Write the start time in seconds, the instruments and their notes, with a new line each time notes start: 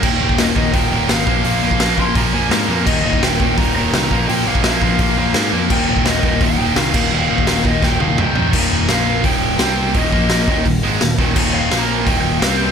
Already playing: overdriven electric guitar A#3
0.02 picked electric bass D#1, overdriven electric guitar D#2 A#2 D#3, lead electric guitar G5, kick, crash
0.21 picked electric bass D#1, overdriven electric guitar D#2 A#2 D#3
0.29 kick
0.38 picked electric bass D#1, overdriven electric guitar D#2 A#2 D#3, lead electric guitar D#5, snare, open hi-hat
0.56 picked electric bass D#1, overdriven electric guitar D#2 A#2 D#3, lead electric guitar D#5, kick
0.73 picked electric bass D#1, overdriven electric guitar D#2 A#2 D#3, lead electric guitar G5, kick, open hi-hat
0.91 picked electric bass D#1, overdriven electric guitar D#2 A#2 D#3
1.09 picked electric bass G#1, overdriven electric guitar D#2 A#2 D#3, lead electric guitar F5, snare, open hi-hat
1.27 picked electric bass A#1, overdriven electric guitar A#2 F3 A#3, kick
1.44 picked electric bass A#1, overdriven electric guitar A#2 F3 A#3, lead electric guitar F5, open hi-hat
1.63 picked electric bass A#1, overdriven electric guitar A#2 F3 A#3
1.71 kick
1.80 picked electric bass A#1, overdriven electric guitar A#2 F3 A#3, snare, open hi-hat
1.98 picked electric bass A#1, overdriven electric guitar A#2 F3 A#3, lead electric guitar C6, kick
2.15 picked electric bass A#1, overdriven electric guitar A#2 F3 A#3, lead electric guitar A#5, kick, open hi-hat
2.32 picked electric bass A#1, overdriven electric guitar A#2 F3 A#3, lead electric guitar G#5
2.50 picked electric bass G#2, overdriven electric guitar A#2 F3 A#3, lead electric guitar A#5, snare, open hi-hat
2.69 picked electric bass F2, overdriven electric guitar A#2 F3 A#3
2.87 picked electric bass D#1, overdriven electric guitar D#2 A#2 D#3, lead electric guitar D#5, kick, crash
3.05 picked electric bass D#1, overdriven electric guitar D#2 A#2 D#3, lead electric guitar D#5
3.13 kick
3.22 picked electric bass D#1, overdriven electric guitar D#2 A#2 D#3, lead electric guitar G5, snare, open hi-hat
3.40 picked electric bass D#1, overdriven electric guitar D#2 A#2 D#3, kick
3.57 picked electric bass D#1, overdriven electric guitar D#2 A#2 D#3, lead electric guitar A#5, kick, open hi-hat
3.76 picked electric bass D#1, overdriven electric guitar D#2 A#2 D#3, lead electric guitar A#5
3.93 picked electric bass C2, overdriven electric guitar D#2 A#2 D#3, snare, open hi-hat
4.11 picked electric bass A#1, overdriven electric guitar A#2 F3 A#3, kick
4.29 picked electric bass A#1, overdriven electric guitar A#2 F3 A#3, lead electric guitar G5, open hi-hat
4.46 picked electric bass A#1, overdriven electric guitar A#2 F3 A#3, lead electric guitar F5
4.55 kick
4.64 picked electric bass A#1, overdriven electric guitar A#2 F3 A#3, lead electric guitar F5, snare, open hi-hat
4.81 picked electric bass A#1, overdriven electric guitar A#2 F3 A#3, kick
4.99 picked electric bass A#1, overdriven electric guitar A#2 F3 A#3, kick, open hi-hat
5.17 picked electric bass A#1, overdriven electric guitar A#2 F3 A#3
5.34 picked electric bass G#2, overdriven electric guitar A#2 F3 A#3, snare, open hi-hat
5.52 picked electric bass F2, overdriven electric guitar A#2 F3 A#3
5.70 picked electric bass D#1, overdriven electric guitar D#2 A#2 D#3, lead electric guitar G5, kick, crash
5.88 picked electric bass D#1, overdriven electric guitar D#2 A#2 D#3
5.97 kick
6.05 picked electric bass D#1, overdriven electric guitar D#2 A#2 D#3, lead electric guitar D#5, snare, open hi-hat
6.23 picked electric bass D#1, overdriven electric guitar D#2 A#2 D#3, lead electric guitar D#5, kick
6.41 picked electric bass D#1, overdriven electric guitar D#2 A#2 D#3, lead electric guitar G5, kick, open hi-hat
6.59 picked electric bass D#1, overdriven electric guitar D#2 A#2 D#3
6.76 picked electric bass C2, overdriven electric guitar D#2 A#2 D#3, lead electric guitar F5, snare, open hi-hat
6.94 picked electric bass D#1, overdriven electric guitar D#2 A#2 D#3, kick, crash
7.12 picked electric bass D#1, overdriven electric guitar D#2 A#2 D#3, lead electric guitar F5
7.30 picked electric bass D#1, overdriven electric guitar D#2 A#2 D#3
7.38 kick
7.47 picked electric bass D#1, overdriven electric guitar D#2 A#2 D#3, snare, open hi-hat
7.65 picked electric bass D#1, overdriven electric guitar D#2 A#2 D#3, lead electric guitar D#5, kick
7.82 picked electric bass D#1, overdriven electric guitar D#2 A#2 D#3, lead electric guitar G5, kick, snare
8.00 picked electric bass D#1, overdriven electric guitar D#2 A#2 D#3, lead electric guitar F5, high tom
8.18 picked electric bass C2, overdriven electric guitar D#2 A#2 D#3, lead electric guitar G5, mid tom
8.36 picked electric bass A#1, overdriven electric guitar D#2 A#2 D#3, floor tom
8.53 picked electric bass D#1, overdriven electric guitar D#2 A#2 D#3, kick, crash
8.88 picked electric bass A#1, overdriven electric guitar A#2 F3 A#3, lead electric guitar F5, snare, open hi-hat
9.24 picked electric bass D#1, overdriven electric guitar D#2 A#2 D#3, lead electric guitar G5, kick, open hi-hat
9.59 picked electric bass C2, overdriven electric guitar C3 G3 C4, lead electric guitar G5, snare, open hi-hat
9.94 picked electric bass D#1, overdriven electric guitar D#2 A#2 D#3, lead electric guitar D#5, kick, open hi-hat
10.12 picked electric bass A#1, overdriven electric guitar A#2 F3 A#3, kick
10.29 snare, open hi-hat
10.48 picked electric bass D#1, overdriven electric guitar D#2 A#2 D#3, kick
10.66 picked electric bass D#1, overdriven electric guitar D#2 A#2, kick, open hi-hat
10.83 picked electric bass G#1, overdriven electric guitar G#2 D#3 G#3
11.01 picked electric bass D#1, overdriven electric guitar D#2 A#2, snare, open hi-hat
11.18 picked electric bass D#1, overdriven electric guitar D#2 A#2 D#3, kick
11.36 picked electric bass D#1, overdriven electric guitar D#2 A#2 D#3, kick, crash
11.54 lead electric guitar F5
11.71 picked electric bass A#1, overdriven electric guitar A#2 F3 A#3, snare, open hi-hat
11.79 lead electric guitar A#5
12.05 picked electric bass D#1, overdriven electric guitar D#2 A#2 D#3, lead electric guitar G5, kick, open hi-hat
12.22 lead electric guitar G5
12.39 picked electric bass C2, overdriven electric guitar C3 G3 C4, lead electric guitar F5, snare, open hi-hat
12.57 lead electric guitar G5